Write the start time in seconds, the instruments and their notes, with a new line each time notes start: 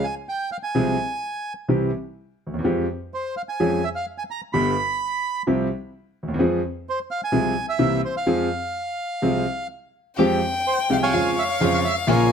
0.04 bandoneon G#5
0.29 bandoneon G5
0.52 bandoneon F5
0.63 bandoneon G#5
0.75 grand piano C2 C3 F3 G#3 C4 G#4
1.68 grand piano C2 C3 E3 G3 C4 G4
2.47 grand piano D2
2.54 grand piano D#2
2.59 grand piano E2
2.64 grand piano F2 F3 G#3 C4 G4
3.14 bandoneon C5
3.37 bandoneon F5
3.49 bandoneon G#5
3.60 grand piano F2 F3 G#3 C#4 G#4
3.84 bandoneon E5
3.95 bandoneon F5
4.18 bandoneon G#5
4.31 bandoneon A#5
4.53 grand piano G1 G2 D3 G3 B3 G4, bandoneon B5
5.47 grand piano C2 C3 F3 G3 C4 G4
6.23 grand piano D2
6.28 grand piano D#2
6.34 grand piano E2
6.39 grand piano F2 F3 G#3 C4 G#4
6.89 bandoneon C5
7.11 bandoneon F5
7.24 bandoneon G#5
7.32 grand piano C2 C3 F3 G#3 C4 G#4
7.69 bandoneon E5
7.79 grand piano C2 C3 E3 A#3 C4 G4
8.05 bandoneon C5
8.17 bandoneon F5
8.26 grand piano F2 F3 G#3 C4 G#4
9.22 grand piano C2 C3 F3 G#3 C4 G#4
10.18 grand piano F2 F3 G#3 C4 G4, string section G#3 F4 G4, violin G5
10.67 bandoneon C5
10.89 grand piano C2 C3 F3 G#3 C4 G4, string section G#3 F4 G4, bandoneon F5
11.03 bandoneon C#5 F5 G#5
11.13 string section F2 G#3 C#4 F4, grand piano F2 C#3 F3 G#3 F4, violin F5
11.39 bandoneon E5
11.50 bandoneon F5
11.61 string section F2 G#3 C#4 F4, grand piano F2 C#3 F3 G#3 F4
11.74 bandoneon F5
11.85 bandoneon E5
12.07 grand piano A#1 A#2 C#3 F3 A#3 F4, string section A#3 C#4 F4, bandoneon A#4 C#5 F5, violin G#5